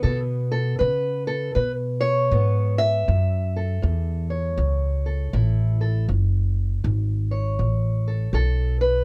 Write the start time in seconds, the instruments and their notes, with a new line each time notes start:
Already playing: steel-string acoustic guitar B3
0.03 upright bass B2, steel-string acoustic guitar B2 A4
0.52 steel-string acoustic guitar A4
0.79 steel-string acoustic guitar B2 B4, upright bass C#3
1.27 steel-string acoustic guitar A4
1.55 upright bass B2, steel-string acoustic guitar B2 B4
2.01 steel-string acoustic guitar C#5
2.32 upright bass G#2, steel-string acoustic guitar B2 B3
2.78 steel-string acoustic guitar E5
3.08 steel-string acoustic guitar F#2, upright bass F#2
3.56 steel-string acoustic guitar A4
3.82 upright bass E2, steel-string acoustic guitar F#2
4.30 steel-string acoustic guitar C#5
4.57 upright bass C#2, steel-string acoustic guitar F#2
5.06 steel-string acoustic guitar A4
5.33 upright bass A1, steel-string acoustic guitar F#2 E4
5.81 steel-string acoustic guitar A4
6.08 upright bass F#1, steel-string acoustic guitar F#2
6.84 upright bass G#1, steel-string acoustic guitar F#2
7.31 steel-string acoustic guitar C#5
7.59 upright bass A1, steel-string acoustic guitar F#2
8.08 steel-string acoustic guitar A4
8.33 upright bass B1, steel-string acoustic guitar F#2 A4
8.81 steel-string acoustic guitar B4